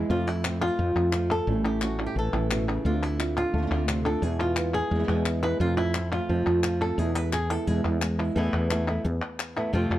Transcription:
Already playing: E2 G#3 E4
0.10 F2 C3 F3 A3 C4 F4
0.27 A3 C4 E4 F4
0.44 F3 A3 C4, clap
0.61 A3 C4 F4
0.78 F2 F3, muted nylon-string guitar stroke
0.95 F2 A3 C4 F4
1.13 F3 A3 C4 F4, clap
1.31 A4
1.47 A1 A2 E3 G3 C#4 E4
1.64 G3 C#4 E4 G4
1.81 E3 G3 C#4 E4 F#4, clap
1.98 G3 C#4 E4
2.06 G4
2.16 A1 E3 A4, muted nylon-string guitar stroke
2.33 A1 G3 C#4 E4
2.50 B2 G3 C#4 E4, clap
2.68 C#3
2.84 D2 D3 A3 C4 F4
3.03 E4
3.18 A3 C4 F4, clap
3.37 F4
3.53 D2 A3, muted nylon-string guitar stroke
3.57 D3 A3 C4 F4
3.62 D3 A3 C4 F4
3.67 D3 A3 C4 F4
3.71 D2 D3 A3 C4 F4
3.88 C3 D3 A3 C4 F4, clap
4.05 D3 A3 C4 F4 A4
4.22 E2 B2 E3 G#3 B3 E4 G#4
4.41 F4
4.56 G#3 B3 E4, clap
4.74 G#4
4.91 E2 E3 G#3, muted nylon-string guitar stroke
4.95 E3 G#3 B3 E4
5.00 G#3 B3 E4
5.04 E3 G#3 B3 E4
5.08 E2 B2 E3 G#3 B3 E4
5.25 E3 G#3 B3 E4, clap
5.42 E2 G#3 B3 E4 B4
5.59 F2 C3 F3 A3 C4 F4
5.77 A3 C4 E4 F4
5.94 C4, muted nylon-string guitar stroke, clap
6.11 A3 C4 F4
6.28 F2 C3 F3 A3 C4 F4
6.46 F2 A3 C4 F4
6.64 F3, muted nylon-string guitar stroke, clap
6.80 A3 C4 F4 A4
6.98 E2 B2 E3 G#3 B3 E4 G#4
7.15 G#3 B3 E4 B4
7.33 G#4, muted nylon-string guitar stroke, clap
7.50 G#3 B3 E4 A4
7.67 E2 B2 E3 G#3 B3 E4 G#4
7.84 E2 G#3 B3 E4
8.01 G#3, muted nylon-string guitar stroke, clap
8.19 G#3 B3 E4
8.36 E2 E3 A3 B3 E4
8.53 E2
8.70 E3 A3 B3 E4, clap
8.88 A3 B3 E4
9.04 E2, muted nylon-string guitar stroke
9.39 clap
9.56 A3 B3 E4
9.73 F2 C3 F3 A3 C4 F4
9.90 F2

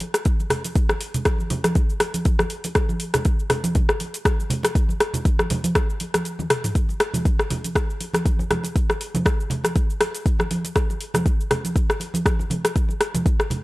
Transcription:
0.00 open hi-hat, muted conga
0.14 cross-stick, closed hi-hat, shaker
0.25 kick, closed hi-hat, shaker
0.40 muted conga, shaker
0.50 cross-stick, open hi-hat, low conga
0.64 closed hi-hat, muted conga, shaker
0.75 kick, closed hi-hat, shaker
0.89 cross-stick, muted conga, high conga, shaker
1.01 open hi-hat
1.14 closed hi-hat, low conga, shaker
1.25 kick, cross-stick, closed hi-hat, muted conga, shaker
1.38 high conga, shaker
1.50 open hi-hat, muted conga, high conga, low conga
1.64 cross-stick, closed hi-hat, high conga, shaker
1.75 kick, closed hi-hat, muted conga, shaker
1.90 shaker
2.00 cross-stick, open hi-hat, muted conga
2.14 closed hi-hat, high conga, shaker
2.25 kick, closed hi-hat, shaker
2.39 cross-stick, muted conga, high conga, shaker
2.50 open hi-hat
2.64 open hi-hat, muted conga, shaker
2.75 kick, cross-stick, closed hi-hat, shaker
2.89 muted conga, high conga, shaker
3.00 open hi-hat
3.14 cross-stick, closed hi-hat, low conga, shaker
3.25 kick, closed hi-hat, muted conga, shaker
3.39 shaker
3.50 cross-stick, open hi-hat, muted conga, high conga, low conga
3.64 closed hi-hat, high conga, shaker
3.75 kick, closed hi-hat, muted conga, low conga, shaker
3.89 cross-stick, shaker
4.00 open hi-hat, muted conga
4.14 closed hi-hat, shaker
4.25 kick, cross-stick, closed hi-hat, shaker
4.40 muted conga, shaker
4.50 open hi-hat, low conga
4.63 cross-stick, closed hi-hat, muted conga, shaker
4.75 kick, closed hi-hat, shaker
4.89 muted conga, high conga, shaker
5.00 cross-stick, open hi-hat
5.14 closed hi-hat, low conga, shaker
5.25 kick, closed hi-hat, muted conga, shaker
5.39 cross-stick, high conga, shaker
5.50 open hi-hat, muted conga, high conga, low conga
5.64 closed hi-hat, high conga, shaker
5.75 kick, cross-stick, closed hi-hat, shaker
5.90 shaker
6.00 open hi-hat, muted conga
6.14 cross-stick, closed hi-hat, high conga, shaker
6.25 closed hi-hat, shaker
6.39 high tom, muted conga, high conga, shaker
6.50 cross-stick, open hi-hat, mid tom
6.64 mid tom, open hi-hat, muted conga, shaker
6.75 kick, closed hi-hat, shaker
6.89 muted conga, shaker
7.00 cross-stick, open hi-hat
7.14 closed hi-hat, high conga, low conga, shaker
7.25 kick, closed hi-hat, muted conga, shaker
7.39 cross-stick, shaker
7.50 open hi-hat, muted conga, low conga
7.64 closed hi-hat, high conga, shaker
7.75 kick, cross-stick, closed hi-hat, shaker
7.90 shaker
8.01 open hi-hat, muted conga
8.14 cross-stick, closed hi-hat, high conga, shaker
8.26 kick, closed hi-hat, shaker
8.39 muted conga, high conga, shaker
8.51 cross-stick, open hi-hat, high conga, low conga
8.64 closed hi-hat, muted conga, shaker
8.76 kick, closed hi-hat, shaker
8.90 cross-stick, muted conga, shaker
9.01 open hi-hat
9.14 closed hi-hat, high conga, low conga, shaker
9.25 kick, cross-stick, closed hi-hat, muted conga, shaker
9.40 shaker
9.50 open hi-hat, muted conga, low conga
9.64 cross-stick, closed hi-hat, high conga, shaker
9.75 kick, closed hi-hat, muted conga, shaker
9.90 shaker
10.01 cross-stick, open hi-hat, muted conga
10.15 closed hi-hat, shaker
10.26 kick, closed hi-hat, shaker
10.39 cross-stick, muted conga, high conga, shaker
10.51 open hi-hat, high conga
10.65 closed hi-hat, muted conga, shaker
10.76 kick, cross-stick, closed hi-hat, shaker
10.90 muted conga, shaker
11.01 open hi-hat
11.14 cross-stick, closed hi-hat, high conga, low conga, shaker
11.26 kick, closed hi-hat, muted conga, shaker
11.40 shaker
11.51 cross-stick, open hi-hat, muted conga, low conga
11.65 closed hi-hat, high conga, shaker
11.76 kick, closed hi-hat, muted conga, shaker
11.90 cross-stick, shaker
12.00 open hi-hat, muted conga
12.14 closed hi-hat, high conga, shaker
12.26 kick, cross-stick, closed hi-hat, shaker
12.39 muted conga, high conga, shaker
12.50 open hi-hat, high conga, low conga
12.65 cross-stick, closed hi-hat, muted conga, shaker
12.76 kick, closed hi-hat, shaker
12.89 muted conga, shaker
13.01 cross-stick, open hi-hat
13.14 closed hi-hat, high conga, low conga, shaker
13.26 kick, closed hi-hat, shaker
13.40 cross-stick, shaker
13.50 open hi-hat, muted conga, low conga

